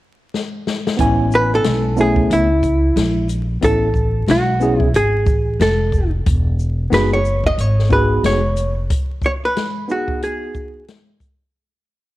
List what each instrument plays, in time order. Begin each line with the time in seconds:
0.34 snare
0.67 snare
0.87 snare
0.97 upright bass A1, tine electric piano B3 C#4 E4 G#5, kick, closed hi-hat
1.32 hollow-body jazz guitar B4, shaker
1.55 hollow-body jazz guitar A4
1.64 upright bass B1, snare, closed hi-hat
1.97 tine electric piano A3 B3 C#4 E4, shaker
2.01 hollow-body jazz guitar G#4
2.16 kick
2.30 upright bass C#2, hollow-body jazz guitar E4, closed hi-hat
2.63 kick, closed hi-hat, shaker
2.96 upright bass A#1, snare, closed hi-hat
3.29 closed hi-hat, shaker
3.61 upright bass A1, tine electric piano B3 C#4 E4 A4, hollow-body jazz guitar A4, kick, closed hi-hat
3.94 kick, shaker
4.27 upright bass B1, hollow-body jazz guitar F#4, snare, closed hi-hat
4.60 tine electric piano B3 C#4 E4 G#4, shaker
4.80 hollow-body jazz guitar E4, kick
4.94 upright bass G#1, hollow-body jazz guitar G#4, closed hi-hat
5.26 upright bass A1, kick, shaker
5.60 upright bass F1, hollow-body jazz guitar A4, snare, closed hi-hat
5.92 kick, shaker
6.26 upright bass E1, kick, closed hi-hat
6.59 shaker
6.90 upright bass F#1, tine electric piano B3 D#4 F#4 G#4, hollow-body jazz guitar B4, snare, closed hi-hat
7.13 hollow-body jazz guitar C#5
7.25 shaker
7.44 hollow-body jazz guitar D#5, kick
7.58 upright bass G#1, hollow-body jazz guitar C#5, closed hi-hat
7.79 snare
7.89 tine electric piano B3 D#4 F#4 G#4, hollow-body jazz guitar B4, kick, shaker
8.23 upright bass F1, hollow-body jazz guitar C#5, snare, closed hi-hat
8.57 closed hi-hat, shaker
8.90 kick, closed hi-hat
9.22 kick, shaker
9.26 hollow-body jazz guitar C#5
9.45 hollow-body jazz guitar B4
9.57 snare, closed hi-hat
9.88 tine electric piano B3 D#4 F#4 G#4, hollow-body jazz guitar F#4, shaker
10.08 kick
10.22 hollow-body jazz guitar G#4, closed hi-hat
10.55 kick, shaker
10.88 snare, closed hi-hat
11.20 kick, closed hi-hat, shaker